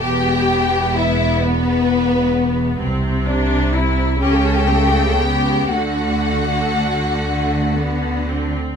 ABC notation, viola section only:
X:1
M:6/8
L:1/8
Q:3/8=42
K:Dmix
V:1 name="Viola section"
B,6 | C D E ^C A, B, | A,3 A, B, C |]